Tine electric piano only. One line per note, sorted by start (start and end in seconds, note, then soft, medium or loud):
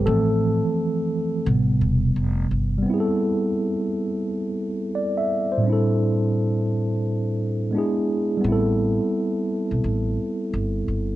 0.06 1.07 E3 medium
0.06 1.07 F3 medium
0.06 0.73 A3 medium
0.06 1.08 C4 medium
0.06 0.72 A4 medium
1.46 2.81 C3 medium
1.46 2.77 G3 medium
1.46 2.81 B3 medium
2.79 5.57 G3 medium
2.83 5.59 B3 medium
2.83 5.61 C4 medium
2.90 5.63 E4 medium
2.90 2.98 G#4 medium
3.00 5.68 A4 medium
4.95 5.16 D5 medium
5.17 5.50 E5 medium
5.52 5.85 C5 medium
5.58 7.66 A2 medium
5.58 7.68 G3 medium
5.64 7.69 C4 medium
5.64 7.71 D4 medium
5.70 7.72 E4 medium
5.70 7.74 A4 medium
7.71 8.42 G#3 medium
7.71 8.40 B3 medium
7.71 8.44 D4 medium
7.77 8.45 E4 medium
7.77 8.46 G#4 medium
8.37 11.15 G3 medium
8.37 11.16 B3 medium
8.44 11.16 C4 medium
8.44 11.16 E4 medium
8.52 11.16 A4 medium